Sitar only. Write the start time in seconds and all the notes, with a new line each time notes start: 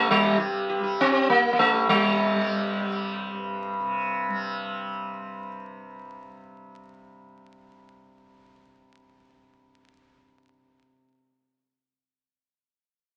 Already playing: A3 G4
0.11 G3
0.24 G4
0.40 G4
0.69 G4
0.83 G4
1.01 C4
1.12 G4
1.30 A#3
1.53 A#3
1.59 A3
1.74 G4
1.89 G3